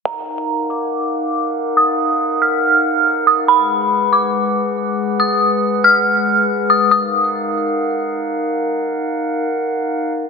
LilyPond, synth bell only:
\new Staff \with { instrumentName = "Synth bell" } { \time 4/4 \key ees \minor \tempo 4 = 140 bes''4. d'''2~ d'''8 | ees'''4. f'''2 ees'''8 | ces'''4. d'''2~ d'''8 | ees'''4. f'''2 ees'''8 |
ees'''2. r4 | r1 | }